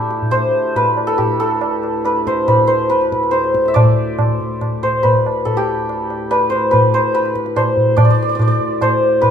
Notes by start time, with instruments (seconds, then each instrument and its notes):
Already playing: harmonium D2 A2, santur D4 E4 G4
0.11 tabla te
0.22 tabla ge
0.31 santur C5, tabla na, tabla ge
0.76 santur B4, tabla tin, tabla ge
0.97 tabla na
1.07 santur A4
1.18 santur G4, tabla tin, tabla ge
1.40 santur A4
1.61 tabla na
1.83 tabla na
2.05 santur B4, tabla na
2.27 santur C5, tabla ke
2.48 santur B4, tabla na, tabla ge
2.67 santur C5
2.90 santur B4, tabla te
3.01 tabla te
3.12 tabla ke
3.23 tabla te
3.31 santur C5, tabla te
3.44 tabla te
3.55 tabla ke
3.65 santur E5, tabla te
3.74 santur D5, tabla na, tabla ge
4.19 tabla na, tabla ge
4.40 tabla ge
4.61 tabla na, tabla ge
4.83 santur C5, tabla ge
5.03 santur B4, tabla tin, tabla ge
5.26 tabla na
5.45 santur A4, tabla tin, tabla ge
5.57 santur G4
5.89 tabla na
6.10 tabla na
6.31 santur B4, tabla na
6.50 santur C5, tabla ke
6.71 santur B4, tabla na, tabla ge
6.94 santur C5
7.15 santur B4, tabla te
7.25 tabla te
7.35 tabla ke
7.46 tabla te
7.56 santur C5, tabla na, tabla ge
7.77 tabla ge
7.97 harmonium D2 A2, santur D5, tabla na, tabla ge
8.05 santur D5
8.10 santur D5
8.15 santur D5
8.22 santur D5
8.29 santur D5
8.35 santur D5
8.39 santur D5, tabla na, tabla ge
8.48 santur D5
8.60 tabla ge
8.81 santur C5, tabla na, tabla ge
9.22 santur B4, tabla tin, tabla ge